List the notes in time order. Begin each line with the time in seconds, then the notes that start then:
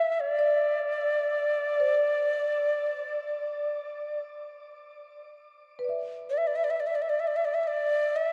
Already playing: E5
0.12 E5
0.20 D5
0.39 D5
1.80 C5
5.79 B4
5.84 D5
5.89 E5
6.30 D5
6.38 E5
6.47 D5
6.56 E5
6.64 D5
6.70 E5
6.80 D5
6.87 E5
6.95 D5
7.02 E5
7.09 D5
7.20 E5
7.27 D5
7.36 E5
7.45 D5
7.54 E5
7.63 E5
7.67 D5
8.16 E5